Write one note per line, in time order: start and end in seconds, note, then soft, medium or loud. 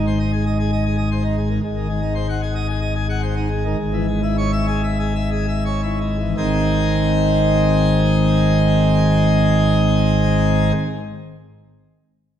0.00 1.59 G#1 medium
0.00 1.58 G#2 medium
0.07 0.18 C5 medium
0.20 0.31 D#5 medium
0.33 0.44 G#4 medium
0.46 0.57 D#5 medium
0.60 0.71 G#4 medium
0.73 0.84 D#5 medium
0.86 0.97 G#4 medium
0.98 1.09 D#5 medium
1.12 1.23 C5 medium
1.24 1.36 D#4 medium
1.37 1.49 G#3 medium
1.50 1.61 D#3 medium
1.63 3.74 G#1 loud
1.63 3.74 G#2 loud
1.76 1.87 D#3 medium
1.89 2.01 G#3 medium
2.02 2.14 D#4 medium
2.15 2.27 C5 medium
2.29 2.41 F#5 loud
2.42 2.54 G#4 medium
2.55 2.67 D#5 medium
2.68 2.80 G#4 medium
2.82 2.93 D#5 medium
2.95 3.07 G#4 medium
3.10 3.21 F#5 loud
3.23 3.35 C5 medium
3.37 3.49 D#4 medium
3.51 3.63 G#3 medium
3.65 3.77 D#3 medium
3.79 6.33 G#1 loud
3.79 6.33 G#2 loud
3.93 4.06 E3 medium
4.08 4.21 G#3 medium
4.23 4.36 E4 medium
4.38 4.51 C#5 loud
4.52 4.66 E5 loud
4.68 4.82 G#4 loud
4.83 4.97 E5 medium
4.99 5.13 G#4 medium
5.15 5.30 E5 medium
5.31 5.46 G#4 medium
5.48 5.63 E5 medium
5.65 5.81 C#5 medium
5.83 5.99 E4 medium
6.01 6.17 G#3 medium
6.20 6.35 E3 medium
6.37 10.72 G#1 medium
6.37 10.72 G#2 medium
6.37 10.71 D#3 medium
6.37 10.72 C4 medium
6.37 10.72 D#4 medium
6.37 10.72 G#4 medium
6.37 10.72 C5 medium